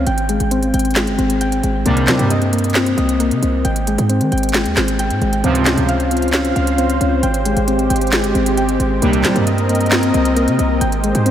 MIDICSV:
0, 0, Header, 1, 6, 480
1, 0, Start_track
1, 0, Tempo, 447761
1, 71, Time_signature, 4, 2, 24, 8
1, 12122, End_track
2, 0, Start_track
2, 0, Title_t, "Analog synth pad"
2, 0, Program_c, 0, 89
2, 5830, Note_on_c, 0, 65, 81
2, 5830, Note_on_c, 0, 72, 77
2, 5831, Note_on_c, 0, 77, 88
2, 7731, Note_off_c, 0, 65, 0
2, 7732, Note_off_c, 0, 77, 0
2, 7750, Note_on_c, 0, 56, 81
2, 7751, Note_on_c, 0, 67, 74
2, 9632, Note_off_c, 0, 72, 0
2, 9652, Note_off_c, 0, 56, 0
2, 9652, Note_off_c, 0, 67, 0
2, 9671, Note_on_c, 0, 60, 81
2, 9671, Note_on_c, 0, 70, 78
2, 9671, Note_on_c, 0, 75, 91
2, 11572, Note_off_c, 0, 60, 0
2, 11572, Note_off_c, 0, 70, 0
2, 11572, Note_off_c, 0, 75, 0
2, 11591, Note_on_c, 0, 56, 82
2, 11591, Note_on_c, 0, 67, 72
2, 11591, Note_on_c, 0, 72, 91
2, 12122, Note_off_c, 0, 56, 0
2, 12122, Note_off_c, 0, 67, 0
2, 12122, Note_off_c, 0, 72, 0
2, 12122, End_track
3, 0, Start_track
3, 0, Title_t, "Synth keys"
3, 0, Program_c, 1, 88
3, 72, Note_on_c, 1, 79, 107
3, 314, Note_on_c, 1, 56, 82
3, 549, Note_on_c, 1, 60, 81
3, 779, Note_off_c, 1, 79, 0
3, 792, Note_on_c, 1, 79, 84
3, 1017, Note_off_c, 1, 56, 0
3, 1030, Note_on_c, 1, 56, 90
3, 1256, Note_off_c, 1, 60, 0
3, 1269, Note_on_c, 1, 60, 82
3, 1501, Note_off_c, 1, 79, 0
3, 1514, Note_on_c, 1, 79, 100
3, 1737, Note_off_c, 1, 56, 0
3, 1750, Note_on_c, 1, 56, 77
3, 1990, Note_off_c, 1, 60, 0
3, 1991, Note_off_c, 1, 56, 0
3, 1992, Note_off_c, 1, 79, 0
3, 1992, Note_on_c, 1, 58, 95
3, 2231, Note_on_c, 1, 60, 81
3, 2478, Note_on_c, 1, 75, 97
3, 2696, Note_off_c, 1, 58, 0
3, 2709, Note_on_c, 1, 58, 76
3, 2939, Note_off_c, 1, 60, 0
3, 2952, Note_on_c, 1, 60, 95
3, 3176, Note_off_c, 1, 75, 0
3, 3189, Note_on_c, 1, 75, 92
3, 3416, Note_off_c, 1, 58, 0
3, 3429, Note_on_c, 1, 58, 86
3, 3659, Note_off_c, 1, 60, 0
3, 3672, Note_on_c, 1, 60, 74
3, 3909, Note_on_c, 1, 79, 99
3, 3910, Note_off_c, 1, 58, 0
3, 3910, Note_off_c, 1, 75, 0
3, 3912, Note_off_c, 1, 60, 0
3, 4155, Note_on_c, 1, 56, 84
3, 4389, Note_on_c, 1, 60, 87
3, 4618, Note_off_c, 1, 79, 0
3, 4631, Note_on_c, 1, 79, 88
3, 4858, Note_off_c, 1, 56, 0
3, 4871, Note_on_c, 1, 56, 91
3, 5100, Note_off_c, 1, 60, 0
3, 5113, Note_on_c, 1, 60, 77
3, 5342, Note_off_c, 1, 79, 0
3, 5354, Note_on_c, 1, 79, 104
3, 5577, Note_off_c, 1, 56, 0
3, 5590, Note_on_c, 1, 56, 77
3, 5823, Note_off_c, 1, 60, 0
3, 5831, Note_off_c, 1, 56, 0
3, 5833, Note_off_c, 1, 79, 0
3, 5836, Note_on_c, 1, 60, 97
3, 6074, Note_on_c, 1, 61, 79
3, 6311, Note_on_c, 1, 77, 94
3, 6539, Note_off_c, 1, 60, 0
3, 6552, Note_on_c, 1, 60, 80
3, 6782, Note_off_c, 1, 61, 0
3, 6795, Note_on_c, 1, 61, 94
3, 7019, Note_off_c, 1, 77, 0
3, 7032, Note_on_c, 1, 77, 100
3, 7256, Note_off_c, 1, 60, 0
3, 7268, Note_on_c, 1, 60, 85
3, 7497, Note_off_c, 1, 61, 0
3, 7510, Note_on_c, 1, 61, 84
3, 7750, Note_off_c, 1, 60, 0
3, 7750, Note_off_c, 1, 61, 0
3, 7752, Note_off_c, 1, 77, 0
3, 7752, Note_on_c, 1, 79, 107
3, 7995, Note_on_c, 1, 56, 80
3, 8229, Note_on_c, 1, 60, 82
3, 8459, Note_off_c, 1, 79, 0
3, 8472, Note_on_c, 1, 79, 86
3, 8697, Note_off_c, 1, 56, 0
3, 8710, Note_on_c, 1, 56, 91
3, 8936, Note_off_c, 1, 60, 0
3, 8949, Note_on_c, 1, 60, 80
3, 9181, Note_off_c, 1, 79, 0
3, 9193, Note_on_c, 1, 79, 97
3, 9417, Note_off_c, 1, 56, 0
3, 9430, Note_on_c, 1, 56, 81
3, 9670, Note_off_c, 1, 60, 0
3, 9671, Note_off_c, 1, 56, 0
3, 9672, Note_off_c, 1, 79, 0
3, 9672, Note_on_c, 1, 58, 97
3, 9912, Note_on_c, 1, 60, 77
3, 10158, Note_on_c, 1, 75, 97
3, 10376, Note_off_c, 1, 58, 0
3, 10389, Note_on_c, 1, 58, 77
3, 10619, Note_off_c, 1, 60, 0
3, 10632, Note_on_c, 1, 60, 95
3, 10856, Note_off_c, 1, 75, 0
3, 10869, Note_on_c, 1, 75, 91
3, 11096, Note_off_c, 1, 58, 0
3, 11109, Note_on_c, 1, 58, 88
3, 11339, Note_off_c, 1, 60, 0
3, 11352, Note_on_c, 1, 60, 78
3, 11588, Note_on_c, 1, 79, 101
3, 11590, Note_off_c, 1, 58, 0
3, 11590, Note_off_c, 1, 75, 0
3, 11591, Note_off_c, 1, 60, 0
3, 11834, Note_on_c, 1, 56, 84
3, 12069, Note_on_c, 1, 60, 91
3, 12122, Note_off_c, 1, 56, 0
3, 12122, Note_off_c, 1, 60, 0
3, 12122, Note_off_c, 1, 79, 0
3, 12122, End_track
4, 0, Start_track
4, 0, Title_t, "Analog polysynth"
4, 0, Program_c, 2, 90
4, 1991, Note_on_c, 2, 39, 99
4, 1991, Note_on_c, 2, 46, 99
4, 1991, Note_on_c, 2, 48, 103
4, 1991, Note_on_c, 2, 55, 110
4, 1991, Note_on_c, 2, 62, 110
4, 2447, Note_off_c, 2, 39, 0
4, 2447, Note_off_c, 2, 46, 0
4, 2447, Note_off_c, 2, 48, 0
4, 2447, Note_off_c, 2, 55, 0
4, 2447, Note_off_c, 2, 62, 0
4, 5831, Note_on_c, 2, 37, 104
4, 5831, Note_on_c, 2, 44, 104
4, 5831, Note_on_c, 2, 48, 99
4, 5831, Note_on_c, 2, 53, 109
4, 5831, Note_on_c, 2, 55, 99
4, 5831, Note_on_c, 2, 60, 109
4, 6287, Note_off_c, 2, 37, 0
4, 6287, Note_off_c, 2, 44, 0
4, 6287, Note_off_c, 2, 48, 0
4, 6287, Note_off_c, 2, 53, 0
4, 6287, Note_off_c, 2, 55, 0
4, 6287, Note_off_c, 2, 60, 0
4, 9671, Note_on_c, 2, 39, 99
4, 9671, Note_on_c, 2, 46, 99
4, 9671, Note_on_c, 2, 48, 102
4, 9671, Note_on_c, 2, 55, 102
4, 9671, Note_on_c, 2, 62, 107
4, 10127, Note_off_c, 2, 39, 0
4, 10127, Note_off_c, 2, 46, 0
4, 10127, Note_off_c, 2, 48, 0
4, 10127, Note_off_c, 2, 55, 0
4, 10127, Note_off_c, 2, 62, 0
4, 12122, End_track
5, 0, Start_track
5, 0, Title_t, "808-style bass"
5, 0, Program_c, 3, 38
5, 71, Note_on_c, 3, 32, 114
5, 417, Note_off_c, 3, 32, 0
5, 431, Note_on_c, 3, 32, 103
5, 777, Note_off_c, 3, 32, 0
5, 791, Note_on_c, 3, 32, 111
5, 1151, Note_on_c, 3, 31, 97
5, 1167, Note_off_c, 3, 32, 0
5, 1265, Note_off_c, 3, 31, 0
5, 1271, Note_on_c, 3, 32, 106
5, 1732, Note_off_c, 3, 32, 0
5, 1751, Note_on_c, 3, 32, 104
5, 1981, Note_off_c, 3, 32, 0
5, 1991, Note_on_c, 3, 36, 113
5, 2231, Note_on_c, 3, 55, 101
5, 2247, Note_off_c, 3, 36, 0
5, 2345, Note_off_c, 3, 55, 0
5, 2351, Note_on_c, 3, 43, 101
5, 3157, Note_off_c, 3, 43, 0
5, 3191, Note_on_c, 3, 36, 109
5, 3551, Note_on_c, 3, 48, 98
5, 3567, Note_off_c, 3, 36, 0
5, 3665, Note_off_c, 3, 48, 0
5, 3671, Note_on_c, 3, 36, 105
5, 3901, Note_off_c, 3, 36, 0
5, 3911, Note_on_c, 3, 32, 118
5, 4257, Note_off_c, 3, 32, 0
5, 4271, Note_on_c, 3, 44, 108
5, 4511, Note_on_c, 3, 51, 101
5, 4527, Note_off_c, 3, 44, 0
5, 4625, Note_off_c, 3, 51, 0
5, 4632, Note_on_c, 3, 32, 110
5, 4991, Note_on_c, 3, 39, 101
5, 5007, Note_off_c, 3, 32, 0
5, 5105, Note_off_c, 3, 39, 0
5, 5111, Note_on_c, 3, 32, 107
5, 5471, Note_on_c, 3, 44, 95
5, 5487, Note_off_c, 3, 32, 0
5, 5585, Note_off_c, 3, 44, 0
5, 5591, Note_on_c, 3, 32, 109
5, 5821, Note_off_c, 3, 32, 0
5, 5831, Note_on_c, 3, 37, 117
5, 6177, Note_off_c, 3, 37, 0
5, 6191, Note_on_c, 3, 37, 100
5, 6997, Note_off_c, 3, 37, 0
5, 7031, Note_on_c, 3, 37, 107
5, 7492, Note_off_c, 3, 37, 0
5, 7511, Note_on_c, 3, 37, 104
5, 7741, Note_off_c, 3, 37, 0
5, 7751, Note_on_c, 3, 32, 114
5, 8097, Note_off_c, 3, 32, 0
5, 8111, Note_on_c, 3, 32, 103
5, 8457, Note_off_c, 3, 32, 0
5, 8471, Note_on_c, 3, 32, 110
5, 8830, Note_on_c, 3, 31, 99
5, 8847, Note_off_c, 3, 32, 0
5, 8945, Note_off_c, 3, 31, 0
5, 8950, Note_on_c, 3, 32, 107
5, 9411, Note_off_c, 3, 32, 0
5, 9430, Note_on_c, 3, 32, 108
5, 9661, Note_off_c, 3, 32, 0
5, 9671, Note_on_c, 3, 36, 110
5, 9911, Note_on_c, 3, 55, 97
5, 9927, Note_off_c, 3, 36, 0
5, 10025, Note_off_c, 3, 55, 0
5, 10031, Note_on_c, 3, 43, 102
5, 10837, Note_off_c, 3, 43, 0
5, 10871, Note_on_c, 3, 36, 110
5, 11231, Note_on_c, 3, 48, 98
5, 11247, Note_off_c, 3, 36, 0
5, 11345, Note_off_c, 3, 48, 0
5, 11351, Note_on_c, 3, 36, 106
5, 11581, Note_off_c, 3, 36, 0
5, 11591, Note_on_c, 3, 32, 110
5, 11937, Note_off_c, 3, 32, 0
5, 11951, Note_on_c, 3, 44, 105
5, 12122, Note_off_c, 3, 44, 0
5, 12122, End_track
6, 0, Start_track
6, 0, Title_t, "Drums"
6, 70, Note_on_c, 9, 42, 81
6, 178, Note_off_c, 9, 42, 0
6, 190, Note_on_c, 9, 42, 62
6, 297, Note_off_c, 9, 42, 0
6, 311, Note_on_c, 9, 42, 90
6, 418, Note_off_c, 9, 42, 0
6, 430, Note_on_c, 9, 42, 62
6, 538, Note_off_c, 9, 42, 0
6, 550, Note_on_c, 9, 42, 84
6, 657, Note_off_c, 9, 42, 0
6, 671, Note_on_c, 9, 42, 51
6, 778, Note_off_c, 9, 42, 0
6, 791, Note_on_c, 9, 42, 70
6, 851, Note_off_c, 9, 42, 0
6, 851, Note_on_c, 9, 42, 60
6, 911, Note_off_c, 9, 42, 0
6, 911, Note_on_c, 9, 42, 51
6, 971, Note_off_c, 9, 42, 0
6, 971, Note_on_c, 9, 42, 42
6, 1024, Note_on_c, 9, 39, 96
6, 1030, Note_on_c, 9, 38, 122
6, 1031, Note_off_c, 9, 42, 0
6, 1031, Note_on_c, 9, 42, 85
6, 1131, Note_off_c, 9, 39, 0
6, 1137, Note_off_c, 9, 38, 0
6, 1138, Note_off_c, 9, 42, 0
6, 1150, Note_on_c, 9, 42, 63
6, 1257, Note_off_c, 9, 42, 0
6, 1272, Note_on_c, 9, 42, 58
6, 1379, Note_off_c, 9, 42, 0
6, 1391, Note_on_c, 9, 42, 80
6, 1499, Note_off_c, 9, 42, 0
6, 1511, Note_on_c, 9, 42, 87
6, 1618, Note_off_c, 9, 42, 0
6, 1631, Note_on_c, 9, 42, 68
6, 1739, Note_off_c, 9, 42, 0
6, 1752, Note_on_c, 9, 42, 66
6, 1860, Note_off_c, 9, 42, 0
6, 1990, Note_on_c, 9, 42, 83
6, 2097, Note_off_c, 9, 42, 0
6, 2110, Note_on_c, 9, 42, 63
6, 2217, Note_off_c, 9, 42, 0
6, 2224, Note_on_c, 9, 39, 77
6, 2230, Note_on_c, 9, 38, 99
6, 2231, Note_on_c, 9, 42, 84
6, 2331, Note_off_c, 9, 39, 0
6, 2338, Note_off_c, 9, 38, 0
6, 2338, Note_off_c, 9, 42, 0
6, 2351, Note_on_c, 9, 42, 65
6, 2458, Note_off_c, 9, 42, 0
6, 2470, Note_on_c, 9, 42, 80
6, 2577, Note_off_c, 9, 42, 0
6, 2591, Note_on_c, 9, 42, 52
6, 2698, Note_off_c, 9, 42, 0
6, 2711, Note_on_c, 9, 42, 71
6, 2771, Note_off_c, 9, 42, 0
6, 2771, Note_on_c, 9, 42, 62
6, 2831, Note_off_c, 9, 42, 0
6, 2831, Note_on_c, 9, 42, 52
6, 2891, Note_off_c, 9, 42, 0
6, 2891, Note_on_c, 9, 42, 43
6, 2944, Note_on_c, 9, 39, 94
6, 2950, Note_on_c, 9, 38, 119
6, 2951, Note_off_c, 9, 42, 0
6, 2951, Note_on_c, 9, 42, 83
6, 3051, Note_off_c, 9, 39, 0
6, 3057, Note_off_c, 9, 38, 0
6, 3058, Note_off_c, 9, 42, 0
6, 3070, Note_on_c, 9, 42, 63
6, 3178, Note_off_c, 9, 42, 0
6, 3192, Note_on_c, 9, 42, 58
6, 3299, Note_off_c, 9, 42, 0
6, 3312, Note_on_c, 9, 42, 82
6, 3419, Note_off_c, 9, 42, 0
6, 3431, Note_on_c, 9, 42, 89
6, 3538, Note_off_c, 9, 42, 0
6, 3552, Note_on_c, 9, 42, 67
6, 3659, Note_off_c, 9, 42, 0
6, 3672, Note_on_c, 9, 42, 67
6, 3780, Note_off_c, 9, 42, 0
6, 3910, Note_on_c, 9, 42, 82
6, 4018, Note_off_c, 9, 42, 0
6, 4030, Note_on_c, 9, 42, 63
6, 4137, Note_off_c, 9, 42, 0
6, 4151, Note_on_c, 9, 42, 90
6, 4258, Note_off_c, 9, 42, 0
6, 4271, Note_on_c, 9, 42, 64
6, 4378, Note_off_c, 9, 42, 0
6, 4390, Note_on_c, 9, 42, 81
6, 4497, Note_off_c, 9, 42, 0
6, 4511, Note_on_c, 9, 42, 53
6, 4618, Note_off_c, 9, 42, 0
6, 4631, Note_on_c, 9, 42, 43
6, 4631, Note_on_c, 9, 46, 74
6, 4691, Note_off_c, 9, 42, 0
6, 4691, Note_on_c, 9, 42, 52
6, 4738, Note_off_c, 9, 46, 0
6, 4751, Note_off_c, 9, 42, 0
6, 4751, Note_on_c, 9, 42, 63
6, 4811, Note_off_c, 9, 42, 0
6, 4811, Note_on_c, 9, 42, 75
6, 4864, Note_on_c, 9, 39, 99
6, 4871, Note_on_c, 9, 38, 120
6, 4872, Note_off_c, 9, 42, 0
6, 4872, Note_on_c, 9, 42, 83
6, 4972, Note_off_c, 9, 39, 0
6, 4978, Note_off_c, 9, 38, 0
6, 4979, Note_off_c, 9, 42, 0
6, 4991, Note_on_c, 9, 42, 62
6, 5098, Note_off_c, 9, 42, 0
6, 5104, Note_on_c, 9, 39, 73
6, 5111, Note_on_c, 9, 38, 97
6, 5112, Note_on_c, 9, 42, 57
6, 5212, Note_off_c, 9, 39, 0
6, 5218, Note_off_c, 9, 38, 0
6, 5220, Note_off_c, 9, 42, 0
6, 5232, Note_on_c, 9, 42, 85
6, 5339, Note_off_c, 9, 42, 0
6, 5352, Note_on_c, 9, 42, 88
6, 5459, Note_off_c, 9, 42, 0
6, 5472, Note_on_c, 9, 42, 65
6, 5579, Note_off_c, 9, 42, 0
6, 5591, Note_on_c, 9, 42, 41
6, 5699, Note_off_c, 9, 42, 0
6, 5712, Note_on_c, 9, 42, 67
6, 5819, Note_off_c, 9, 42, 0
6, 5831, Note_on_c, 9, 42, 84
6, 5938, Note_off_c, 9, 42, 0
6, 5950, Note_on_c, 9, 42, 62
6, 6057, Note_off_c, 9, 42, 0
6, 6065, Note_on_c, 9, 39, 76
6, 6071, Note_on_c, 9, 38, 94
6, 6072, Note_on_c, 9, 42, 86
6, 6172, Note_off_c, 9, 39, 0
6, 6178, Note_off_c, 9, 38, 0
6, 6179, Note_off_c, 9, 42, 0
6, 6192, Note_on_c, 9, 42, 62
6, 6299, Note_off_c, 9, 42, 0
6, 6310, Note_on_c, 9, 42, 82
6, 6418, Note_off_c, 9, 42, 0
6, 6431, Note_on_c, 9, 42, 52
6, 6538, Note_off_c, 9, 42, 0
6, 6551, Note_on_c, 9, 42, 71
6, 6611, Note_off_c, 9, 42, 0
6, 6611, Note_on_c, 9, 42, 58
6, 6671, Note_off_c, 9, 42, 0
6, 6671, Note_on_c, 9, 42, 51
6, 6732, Note_off_c, 9, 42, 0
6, 6732, Note_on_c, 9, 42, 41
6, 6784, Note_on_c, 9, 39, 97
6, 6791, Note_on_c, 9, 38, 125
6, 6792, Note_off_c, 9, 42, 0
6, 6792, Note_on_c, 9, 42, 82
6, 6892, Note_off_c, 9, 39, 0
6, 6898, Note_off_c, 9, 38, 0
6, 6899, Note_off_c, 9, 42, 0
6, 6911, Note_on_c, 9, 42, 62
6, 7018, Note_off_c, 9, 42, 0
6, 7032, Note_on_c, 9, 42, 59
6, 7140, Note_off_c, 9, 42, 0
6, 7152, Note_on_c, 9, 42, 83
6, 7260, Note_off_c, 9, 42, 0
6, 7272, Note_on_c, 9, 42, 91
6, 7379, Note_off_c, 9, 42, 0
6, 7392, Note_on_c, 9, 42, 68
6, 7499, Note_off_c, 9, 42, 0
6, 7513, Note_on_c, 9, 42, 66
6, 7620, Note_off_c, 9, 42, 0
6, 7751, Note_on_c, 9, 42, 84
6, 7858, Note_off_c, 9, 42, 0
6, 7870, Note_on_c, 9, 42, 63
6, 7977, Note_off_c, 9, 42, 0
6, 7991, Note_on_c, 9, 42, 87
6, 8099, Note_off_c, 9, 42, 0
6, 8111, Note_on_c, 9, 42, 64
6, 8218, Note_off_c, 9, 42, 0
6, 8230, Note_on_c, 9, 42, 80
6, 8338, Note_off_c, 9, 42, 0
6, 8351, Note_on_c, 9, 42, 52
6, 8458, Note_off_c, 9, 42, 0
6, 8471, Note_on_c, 9, 42, 70
6, 8531, Note_off_c, 9, 42, 0
6, 8531, Note_on_c, 9, 42, 63
6, 8591, Note_off_c, 9, 42, 0
6, 8591, Note_on_c, 9, 42, 53
6, 8651, Note_off_c, 9, 42, 0
6, 8651, Note_on_c, 9, 42, 43
6, 8704, Note_on_c, 9, 39, 96
6, 8711, Note_on_c, 9, 38, 121
6, 8712, Note_off_c, 9, 42, 0
6, 8712, Note_on_c, 9, 42, 84
6, 8811, Note_off_c, 9, 39, 0
6, 8818, Note_off_c, 9, 38, 0
6, 8819, Note_off_c, 9, 42, 0
6, 8831, Note_on_c, 9, 42, 64
6, 8938, Note_off_c, 9, 42, 0
6, 8952, Note_on_c, 9, 42, 57
6, 9059, Note_off_c, 9, 42, 0
6, 9072, Note_on_c, 9, 42, 83
6, 9179, Note_off_c, 9, 42, 0
6, 9192, Note_on_c, 9, 42, 88
6, 9299, Note_off_c, 9, 42, 0
6, 9312, Note_on_c, 9, 42, 67
6, 9419, Note_off_c, 9, 42, 0
6, 9433, Note_on_c, 9, 42, 66
6, 9540, Note_off_c, 9, 42, 0
6, 9671, Note_on_c, 9, 42, 84
6, 9778, Note_off_c, 9, 42, 0
6, 9790, Note_on_c, 9, 42, 62
6, 9897, Note_off_c, 9, 42, 0
6, 9905, Note_on_c, 9, 39, 76
6, 9911, Note_on_c, 9, 38, 102
6, 9912, Note_on_c, 9, 42, 88
6, 10012, Note_off_c, 9, 39, 0
6, 10018, Note_off_c, 9, 38, 0
6, 10019, Note_off_c, 9, 42, 0
6, 10031, Note_on_c, 9, 42, 64
6, 10138, Note_off_c, 9, 42, 0
6, 10150, Note_on_c, 9, 42, 83
6, 10258, Note_off_c, 9, 42, 0
6, 10271, Note_on_c, 9, 42, 51
6, 10378, Note_off_c, 9, 42, 0
6, 10391, Note_on_c, 9, 42, 70
6, 10451, Note_off_c, 9, 42, 0
6, 10451, Note_on_c, 9, 42, 60
6, 10511, Note_off_c, 9, 42, 0
6, 10511, Note_on_c, 9, 42, 50
6, 10571, Note_off_c, 9, 42, 0
6, 10571, Note_on_c, 9, 42, 42
6, 10624, Note_on_c, 9, 39, 96
6, 10631, Note_on_c, 9, 38, 116
6, 10632, Note_off_c, 9, 42, 0
6, 10632, Note_on_c, 9, 42, 85
6, 10731, Note_off_c, 9, 39, 0
6, 10738, Note_off_c, 9, 38, 0
6, 10739, Note_off_c, 9, 42, 0
6, 10751, Note_on_c, 9, 42, 64
6, 10858, Note_off_c, 9, 42, 0
6, 10872, Note_on_c, 9, 42, 57
6, 10979, Note_off_c, 9, 42, 0
6, 10992, Note_on_c, 9, 42, 81
6, 11099, Note_off_c, 9, 42, 0
6, 11112, Note_on_c, 9, 42, 90
6, 11219, Note_off_c, 9, 42, 0
6, 11232, Note_on_c, 9, 42, 67
6, 11339, Note_off_c, 9, 42, 0
6, 11353, Note_on_c, 9, 42, 66
6, 11460, Note_off_c, 9, 42, 0
6, 11590, Note_on_c, 9, 42, 82
6, 11698, Note_off_c, 9, 42, 0
6, 11710, Note_on_c, 9, 42, 61
6, 11817, Note_off_c, 9, 42, 0
6, 11831, Note_on_c, 9, 42, 87
6, 11938, Note_off_c, 9, 42, 0
6, 11951, Note_on_c, 9, 42, 62
6, 12058, Note_off_c, 9, 42, 0
6, 12070, Note_on_c, 9, 42, 82
6, 12122, Note_off_c, 9, 42, 0
6, 12122, End_track
0, 0, End_of_file